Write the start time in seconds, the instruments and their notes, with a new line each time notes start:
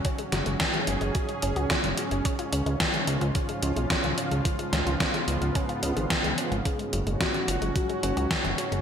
Already playing: analog synth pad G#2 C#3 F#3 C#4
0.05 synth arpeggio sound C#4, analog synth pad G#4, kick, closed hi-hat
0.18 synth arpeggio sound G#3, closed hi-hat
0.32 analog synth bass F#1, synth arpeggio sound F#3, snare, closed hi-hat
0.46 analog synth bass F#1, synth arpeggio sound G#3, closed hi-hat
0.60 synth arpeggio sound C#4, kick, snare, closed hi-hat
0.74 synth arpeggio sound F#4, closed hi-hat
0.87 analog synth bass F#1, synth arpeggio sound C#4, closed hi-hat
1.01 analog synth bass F#1, synth arpeggio sound G#3, closed hi-hat
1.15 synth arpeggio sound F#3, kick, closed hi-hat
1.29 synth arpeggio sound G#3, closed hi-hat
1.42 analog synth bass F#1, synth arpeggio sound C#4, closed hi-hat
1.56 analog synth bass C#2, synth arpeggio sound F#4, closed hi-hat
1.70 synth arpeggio sound C#4, kick, snare, closed hi-hat
1.84 analog synth bass F#1, synth arpeggio sound G#3, closed hi-hat
1.97 synth arpeggio sound F#3, closed hi-hat
2.11 analog synth bass F#1, synth arpeggio sound G#3, closed hi-hat
2.25 analog synth pad F3 F4, synth arpeggio sound C#4, kick, closed hi-hat
2.39 synth arpeggio sound F4, closed hi-hat
2.53 analog synth bass C#2, synth arpeggio sound C#4, closed hi-hat
2.66 analog synth bass C#2, synth arpeggio sound G#3, closed hi-hat
2.80 synth arpeggio sound F3, kick, snare, closed hi-hat
2.94 synth arpeggio sound G#3, closed hi-hat
3.07 analog synth bass C#2, synth arpeggio sound C#4, closed hi-hat
3.21 analog synth bass C#2, synth arpeggio sound F4, closed hi-hat
3.35 synth arpeggio sound C#4, kick, closed hi-hat
3.49 synth arpeggio sound G#3, closed hi-hat
3.63 analog synth bass C#2, synth arpeggio sound F3, closed hi-hat
3.76 analog synth bass B1, synth arpeggio sound G#3, closed hi-hat
3.90 synth arpeggio sound C#4, kick, snare, closed hi-hat
4.04 analog synth bass C#2, synth arpeggio sound F4, closed hi-hat
4.18 synth arpeggio sound C#4, closed hi-hat
4.31 analog synth bass C#2, synth arpeggio sound G#3, closed hi-hat
4.45 synth arpeggio sound F3, analog synth pad B3, kick, closed hi-hat
4.59 synth arpeggio sound G#3, closed hi-hat
4.73 analog synth bass C#2, synth arpeggio sound C#4, snare, closed hi-hat
4.86 analog synth bass C#2, synth arpeggio sound F4, closed hi-hat
5.00 synth arpeggio sound C#4, kick, snare, closed hi-hat
5.14 synth arpeggio sound G#3, closed hi-hat
5.28 analog synth bass C#2, synth arpeggio sound F3, closed hi-hat
5.41 analog synth bass C#2, synth arpeggio sound G#3, closed hi-hat
5.55 synth arpeggio sound C#4, kick, closed hi-hat
5.69 synth arpeggio sound F4, closed hi-hat
5.83 analog synth bass C#2, synth arpeggio sound C#4, closed hi-hat
5.96 analog synth bass G#1, synth arpeggio sound G#3, closed hi-hat
6.10 synth arpeggio sound F3, kick, snare, closed hi-hat
6.24 analog synth bass C#2, synth arpeggio sound G#3, closed hi-hat
6.38 synth arpeggio sound C#4, closed hi-hat
6.52 analog synth bass G#1, synth arpeggio sound F4, closed hi-hat
6.65 analog synth pad F#3 C#4 F#4, synth arpeggio sound C#4, soft synth lead G#4, kick, closed hi-hat
6.79 synth arpeggio sound G#3, closed hi-hat
6.93 analog synth bass F#1, synth arpeggio sound F#3, closed hi-hat
7.07 analog synth bass F#1, synth arpeggio sound G#3, closed hi-hat
7.20 synth arpeggio sound C#4, soft synth lead F#4, kick, snare, closed hi-hat
7.34 synth arpeggio sound F#4, closed hi-hat
7.48 analog synth bass F#1, synth arpeggio sound C#4, soft synth lead F4, closed hi-hat
7.62 analog synth bass F#1, synth arpeggio sound G#3, closed hi-hat
7.76 synth arpeggio sound F#3, soft synth lead F#4, kick, closed hi-hat
7.89 synth arpeggio sound G#3, closed hi-hat
8.03 analog synth bass F#1, synth arpeggio sound C#4, closed hi-hat
8.17 analog synth bass C#2, synth arpeggio sound F#4, closed hi-hat
8.31 synth arpeggio sound C#4, kick, snare, closed hi-hat
8.44 analog synth bass F#1, synth arpeggio sound G#3, closed hi-hat
8.58 synth arpeggio sound F#3, closed hi-hat
8.72 analog synth bass F#1, synth arpeggio sound G#3, closed hi-hat